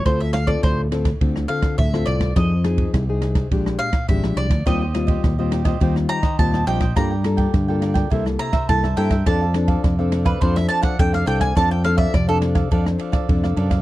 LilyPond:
<<
  \new Staff \with { instrumentName = "Mandolin" } { \time 4/4 \key f \major \tempo 4 = 104 c''16 e''16 f''16 d''16 c''8 r4 f''8 e''8 d''8 | ees''4 r4. f''8 e''8 d''8 | ees''4 r4. bes''8 a''8 g''8 | bes''4 r4. bes''8 a''8 g''8 |
a''4 r8. b'16 c''16 e''16 a''16 ges''16 g''16 f''16 g''16 aes''16 | a''16 g''16 f''16 e''16 d''16 a'16 r2 r8 | }
  \new Staff \with { instrumentName = "Cavaquinho" } { \time 4/4 \key f \major r1 | r1 | <ees' g' c'' ees''>16 <g' c'' ees''>16 r16 <g' c'' ees''>8 <g' c'' ees''>16 <ees' g' c'' ees''>16 <g' c'' ees''>16 <ees' g' c'' ees''>16 r16 <ees' g' c'' ees''>16 <g' c'' ees''>8 <g' c'' ees''>16 <ees' g' c'' ees''>16 <g' c'' ees''>16 | <f' bes' d'' g''>16 <bes' d'' g''>16 r16 <bes' d'' g''>8 <bes' d'' g''>16 <f' bes' d'' g''>16 <bes' d'' g''>16 <e' bes' c'' e''>16 r16 <e' bes' c'' e''>16 <bes' c'' e''>8 <bes' c'' e''>16 <e' bes' c'' e''>16 <bes' c'' e''>16 |
<d' a' d'' f''>16 <a' d'' f''>16 r16 <a' d'' f''>8 <a' d'' f''>16 <d' a' d'' f''>16 <a' d'' f''>16 <d' a' d'' f''>16 r16 <d' a' d'' f''>16 <a' d'' f''>8 <a' d'' f''>16 <d' a' d'' f''>16 <a' d'' f''>16 | <d' a' d'' f''>16 <a' d'' f''>16 r16 <a' d'' f''>8 <a' d'' f''>16 <d' a' d'' f''>16 <a' d'' f''>16 <d' a' d'' f''>16 r16 <d' a' d'' f''>16 <a' d'' f''>8 <a' d'' f''>16 <d' a' d'' f''>16 <a' d'' f''>16 | }
  \new Staff \with { instrumentName = "Nylon-string guitar" } { \time 4/4 \key f \major << { <c' f' a'>8. <c' f' a'>8. <c' f' a'>16 r16 <c' f' a'>8 <c' f' a'>8. <c' f' a'>8. | <c' ees' aes'>16 r16 <c' ees' aes'>8. <c' ees' aes'>8. <aes d' g'>8. r16 <aes d' g'>8. r16 | <g c' f'>16 r16 <g c' f'>8. <g c' f'>8 <g c' f'>16 <g c' f'>8. r16 <g c' f'>8 <g c' f'>16 r16 | <bes f' a'>16 r16 <bes f' a'>8 r16 <bes f' a'>8. <bes e' a'>8. r16 <bes e' a'>16 r16 <bes e' a'>16 r16 |
<c' d' a'>16 r16 <c' d' a'>8. <c' d' a'>8. <c' d' a'>4 <c' d' a'>8 <c' d' a'>8 | <c' d' a'>16 r16 <c' d' a'>8 r16 <c' d' a'>8. <c' d' a'>4 <c' d' a'>8. r16 | } \\ { d4 a,4 d4 a,4 | f4 c4 bes,4 f4 | ees4 bes,4 ees4 bes,4 | g4 d4 c4 g,4 |
f4 c4 f4 c4 | f4 c4 f4 c4 | } >> }
  \new Staff \with { instrumentName = "Fingered electric bass" } { \clef bass \time 4/4 \key f \major d,4 d,4 d,8 r8 d,8 c,8 | f,4 c,4 bes,,8 r8 aes,,16 bes,,16 c,16 d,16 | ees,4 ees,4 ees,8 r8 ees,8 bes,,8 | g,4 g,4 c,8 r8 c,8 g,8 |
f,4 f,4 f,8 r8 f,8 c,8 | f,4 f,4 f,8 r8 f,8 ges,8 | }
  \new DrumStaff \with { instrumentName = "Drums" } \drummode { \time 4/4 <bd cymr ss>8 <cymr ss>16 <bd cymr>16 <bd cymr ss>8 <cymr ss>16 <bd cymr ss>16 <bd cymr>16 ss16 cymr16 <bd cymr ss>16 <bd cymr>16 ss16 cymr16 <bd cymr ss>16 | <bd cymr ss>8 <cymr ss>16 <bd cymr>16 <bd cymr ss>8 <cymr ss>16 <bd cymr ss>16 <bd cymr>16 ss16 cymr16 <bd cymr ss>16 <bd cymr>16 ss16 cymr16 <bd cymr ss>16 | <bd cymr ss>8 <cymr ss>16 <bd cymr>16 <bd cymr ss>8 <cymr ss>16 <bd cymr ss>16 <bd cymr>16 ss16 cymr16 <bd cymr ss>16 <bd cymr>16 ss16 cymr16 <bd cymr ss>16 | <bd cymr ss>8 <cymr ss>16 <bd cymr>16 <bd cymr ss>8 <cymr ss>16 <bd cymr ss>16 <bd cymr>16 ss16 cymr16 <bd cymr ss>16 <bd cymr>16 ss16 cymr16 <bd cymr ss>16 |
<bd cymr ss>8 <cymr ss>16 <bd cymr>16 <bd cymr ss>8 <cymr ss>16 <bd cymr ss>16 <bd cymr>16 ss16 cymr16 <bd cymr ss>16 <bd cymr>16 ss16 cymr16 <bd cymr ss>16 | <bd cymr ss>8 <cymr ss>16 <bd cymr>16 <bd cymr ss>8 <cymr ss>16 <bd cymr ss>16 <bd cymr>16 ss16 cymr16 <bd cymr ss>16 <bd cymr>16 ss16 cymr16 <bd cymr ss>16 | }
>>